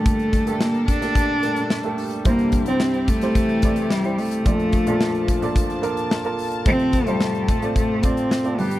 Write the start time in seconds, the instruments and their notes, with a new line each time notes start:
Already playing: upright piano G2 A#2 D3 A3 D4 G4 A4, string section A#2 G3 D4 A4, cello A3
0.06 kick, closed hi-hat
0.19 closed hi-hat
0.33 kick, closed hi-hat
0.46 upright piano A3 A#3 D4 G4 A4, closed hi-hat
0.61 cello A#3, snare
0.74 closed hi-hat
0.88 cello D4, kick, closed hi-hat
1.01 upright piano A3 A#3 D4 G4 A4, snare, closed hi-hat
1.15 kick, closed hi-hat
1.43 upright piano A3 A#3 D4 G4 A4, closed hi-hat
1.56 closed hi-hat
1.70 snare
1.83 upright piano A3 A#3 D4 G4 A4, closed hi-hat
1.98 open hi-hat
2.11 closed hi-hat
2.25 upright piano C2 G2 G3 C4 E4 G4 C5, string section C3 E4 G4, french horn section D3 D4, cello A#3, kick, closed hi-hat
2.39 closed hi-hat
2.52 kick, closed hi-hat
2.66 upright piano G3 C4 E4 G4 C5, cello C4, closed hi-hat
2.80 snare
2.94 closed hi-hat
3.08 cello A3, kick, closed hi-hat
3.21 upright piano G3 C4 E4 G4 C5, snare, closed hi-hat
3.35 french horn section E3 E4, kick, closed hi-hat
3.49 closed hi-hat
3.62 upright piano G3 C4 E4 G4 D5, kick, closed hi-hat
3.76 closed hi-hat
3.91 cello G3, snare
4.04 upright piano G3 C4 E4 G4 C5, closed hi-hat
4.18 cello A3, open hi-hat
4.31 closed hi-hat
4.45 upright piano A#1 F2 A#2 D4 F4 A4 D5, string section A#2 F3 D4 A5, french horn section F3 F4, kick, closed hi-hat
4.59 closed hi-hat
4.73 kick, closed hi-hat
4.87 upright piano A#2 D4 F4 A4 D5, closed hi-hat
5.01 snare
5.15 closed hi-hat
5.28 kick, closed hi-hat
5.42 upright piano A#2 D4 F4 A4 D5, closed hi-hat
5.56 kick, closed hi-hat
5.70 closed hi-hat
5.82 upright piano A#3 D4 F4 A4 A#4, closed hi-hat
5.97 closed hi-hat
6.11 snare
6.24 upright piano A#3 D4 F4 A4 A#4, closed hi-hat
6.39 open hi-hat
6.52 closed hi-hat
6.65 upright piano F2 C3 A3 C4 F4 A4 C5, string section A2 F3 C4, french horn section A3 A4, cello C4, kick, closed hi-hat
6.79 closed hi-hat
6.93 kick, closed hi-hat
7.07 cello G3, upright piano A3 C4 F4 A4 C5, closed hi-hat
7.21 snare
7.35 closed hi-hat
7.48 cello A3, kick, closed hi-hat
7.62 upright piano A3 C4 F4 A4 D5, closed hi-hat
7.76 cello A3, kick, closed hi-hat
8.03 upright piano A3 C4 F4 A4 D5, cello C4, kick, closed hi-hat
8.17 closed hi-hat
8.31 snare
8.44 upright piano A3 C4 F4 A4 D5, closed hi-hat
8.58 upright piano G2 D3 G3 B3 D4 G4 B4, string section B2 G3 D4 G4, cello G3, french horn section G3 G4, open hi-hat
8.71 closed hi-hat